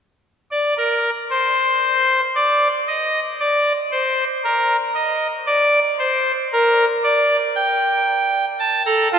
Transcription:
0.51 D5
0.77 A#4
1.30 C5
2.35 D5
2.87 D#5
3.40 D5
3.92 C5
4.44 A#4
4.95 D#5
5.47 D5
5.99 C5
6.52 A#4
7.04 D5
7.55 G5
8.59 A5
8.86 A4 A#5
9.12 F4 A5

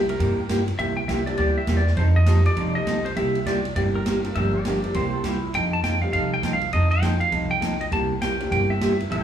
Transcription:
Already playing: A#3 C4 D4 E4 G4
0.09 A#4, ride
0.19 G2 C3 G3 A#3 E4 G4, kick, ride
0.49 C3 G3 A#3 E4 G4, kick, snare, hi-hat pedal, ride
0.68 ride
0.78 C2 C3 G3 A#3 E4 G4 E5, kick, ride
0.97 G5
1.08 C2 C3 G3 A#3 E4 G4 E5, kick, snare, hi-hat pedal, ride
1.26 A#3 C4 D4 E4 G4 D5, ride
1.37 D2 C3 G3 A#3 E4 G4 D5, kick, ride
1.58 E5
1.67 E2 C3 G3 A#3 E4 G4, kick, snare, hi-hat pedal, ride
1.77 D5, snare
1.87 snare
1.96 F2 F3 C4 D#4 A4 C5, kick, ride
2.16 D#5
2.26 F3 A3 C4 D#4 F4 G4 A4, kick, snare, hi-hat pedal, ride
2.45 D5, ride
2.56 C2 F3 C4 D#4 A4, kick, ride
2.75 A3 C4 D#4 F4 G4 D#5
2.86 F3 C4 D#4 A4, kick, snare, hi-hat pedal, ride
3.05 C5, ride
3.15 C2 C3 G3 A#3 E4 G4 E5, kick, ride
3.35 ride
3.46 C3 G3 A#3 E4 G4 D5, kick, snare, hi-hat pedal, ride
3.65 ride
3.75 G1 C3 G3 A#3 C4 D4 E4 G4 D5, kick, ride
3.95 A#4
4.06 C3 G3 A#3 E4 G4, kick, snare, hi-hat pedal, ride
4.24 G3 A#3 D4 F4 G4, ride
4.35 G1 D3 F3 A#3 D4 G4 E5, kick, ride
4.55 D5
4.65 D3 F3 A#3 D4 G4, kick, snare, hi-hat pedal, ride
4.83 A#3 C4 D4 E4 G4, ride
4.94 C2 C3 G3 A#3 E4 G4 C5, kick, ride
5.14 A4
5.23 C3 G3 A#3 E4 G4, kick, snare, hi-hat pedal, ride
5.54 F2 F3 C4 D#4 A4 G5, kick, ride
5.73 A5
5.83 F3 C4 D#4 A4 G5, kick, snare, hi-hat pedal, ride
6.02 A3 C4 D#4 F4 G4 F5
6.13 C2 F3 C4 D#4 A4 F5, kick, ride
6.34 G5
6.42 F3 C4 D#4 A4, kick, snare, hi-hat pedal, ride
6.53 F5
6.61 ride
6.72 F2 F3 C4 D#4 A4 D#5, kick, ride
6.91 G5, ride
7.02 F3 C4 D#4 A4, kick, snare, hi-hat pedal, ride
7.20 F5, ride
7.31 C2 F3 C4 D#4 A4, kick, ride
7.51 G5
7.61 F3 C4 D#4 A4, kick, snare, hi-hat pedal, ride
7.81 D#5, ride
7.91 C2 C3 G3 A#3 E4 G4 A5, kick, ride
8.21 C3 G3 A#3 E4 G4 G5, kick, snare, hi-hat pedal, ride
8.40 A#3 C4 D4 E4 G4, ride
8.50 G1 C3 G3 A#3 E4 G4 G5, kick, ride
8.70 E5
8.81 C3 G3 A#3 E4 G4, kick, snare, hi-hat pedal, ride
9.00 ride
9.10 A1 E3 G3 A3 C#4 E4 G4 A4 E5, kick, ride

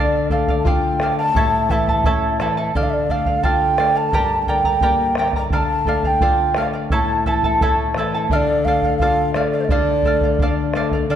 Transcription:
Already playing: D3 A4 D5 F5
0.30 A3 A4 D5 F5, bombo low
0.48 D5 F5, bombo low
0.59 A5
0.64 F4 A4 D5 F5 G5 A5, bombo low
1.00 A3 A4 D5 F5, bombo rim
1.19 D5 F5 A5
1.34 A2 E4 A4 C#5 E5 A5, bombo low
1.69 E3 E4 A4 E5 A5, bombo low
1.88 E4 A4 A5, bombo low
2.04 C#4 E4 A4 C#5 E5 A5, bombo low
2.40 E3 E4 A4 E5 A5, bombo rim
2.57 E4 A4 A5
2.75 D3 A4 D5 F5, bombo low
2.83 F5
2.90 D5 E5
3.09 A3 A4 D5 F5, bombo low
3.26 D5 F5, bombo low
3.43 F4 A4 D5 F5 G5, bombo low
3.77 A3 A4 D5 F5, bombo rim
3.95 D5 F5 A5
4.12 G2 G4 A#4 D5 G5 A#5, bombo low
4.42 A5
4.47 D3 A#4 D5 G5 A#5, bombo low
4.64 A#4 D5 A#5, bombo low
4.81 A#3 G4 A#4 D5 G5 A#5, bombo low
5.15 D3 A#4 D5 G5 A#5, bombo rim
5.33 D5 A#5, bombo low
5.37 A#4 A#5
5.50 D3 A4 D5 F5 A#5, bombo low
5.57 A5
5.85 A3 A4 D5 F5, bombo low
6.03 D5 F5, bombo low
6.07 G5
6.20 F4 A4 D5 F5, bombo low
6.54 A3 A4 D5 F5, bombo rim
6.59 F5
6.73 D5 F5
6.90 A2 E4 A4 C#5 E5 A5 A#5, bombo low
6.97 A5
7.25 E3 E4 A4 E5 A5, bombo low
7.43 E4 A4 A5, bombo low
7.61 A3 E4 A4 C#5 E5 A5, bombo low
7.94 E3 E4 E5, bombo rim
7.99 A4 A5
8.15 E4 A4 A5
8.29 D3 A4 D5 E5 F5, bombo low
8.35 D5
8.65 A3 A4 D5 F5, bombo low
8.82 D5 F5, bombo low
8.98 F4 A4 F5, bombo low
9.02 D5 F5
9.34 A3 A4 D5 F5, bombo rim
9.50 D5 F5
9.55 D5
9.61 C5
9.65 E5, bombo low
9.69 D3 A4 D5 F5
10.03 A3 A4 D5, bombo low
10.07 F5
10.21 F5, bombo low
10.25 D5
10.38 D4 A4 D5, bombo low
10.43 F5
10.74 A3 A4 D5 F5, bombo rim
10.91 D5 F5, bombo low
11.10 D3 A4 D5 F5

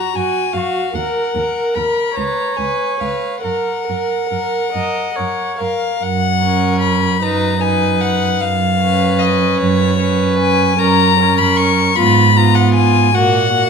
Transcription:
Already playing: F#4 A#5
0.16 F#2 F#4 G#5
0.53 F#2 F#4 F5
0.94 D#2 A#4 F#5
1.35 D#2 A#4
1.75 D#2 A#4 B5
2.16 C#2 B4 C#5 A#5
2.57 C#2 B4 G#5
3.00 C#2 B4 F5
3.43 F#2 A#4 F#5
3.87 F#2 A#4
4.29 F#2 A#4
4.72 F#2 A#4 D#5
5.14 A#4 C#5
5.19 F#2
5.58 F#2 A#4 F5
6.03 F#2 F#5
6.41 C#4 A#4
6.81 B5
7.22 F#2 D#4 B4 A#5
7.61 D#4 B4 G#5
8.01 F#5
8.41 F#2 F5
8.81 C#4 B4
9.19 D#5
9.58 F#2 C#5
9.99 C#4 B4
10.39 G#5
10.78 F#2 C#4 A#4 A#5
11.18 C#4 A#4
11.39 B5
11.57 C#6
11.96 G#2 B3 F4 B5
12.37 B3 F4 A#5
12.55 F#5
12.75 G#5
13.14 A#2 A#3 F#4 F#5
13.54 A#3 F#4

